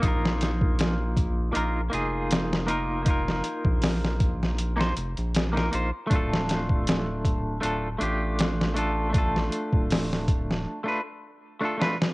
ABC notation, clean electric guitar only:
X:1
M:4/4
L:1/16
Q:"Swing 16ths" 1/4=79
K:Bbdor
V:1 name="Clean electric guitar"
[B,EFB]8 [B,EFB] z [B,EFA]4 [B,EFB]2 | [B,EFB]8- [B,EFB] [B,EFc] z3 [B,EFB] [B,EFc] z | [=A,=DF=A]8 [A,DFA] z [A,DFG]4 [A,DFA]2 | [=A,=DF=A]8- [A,DFA] [A,DF=B] z3 [A,DFA] [A,DFB] z |]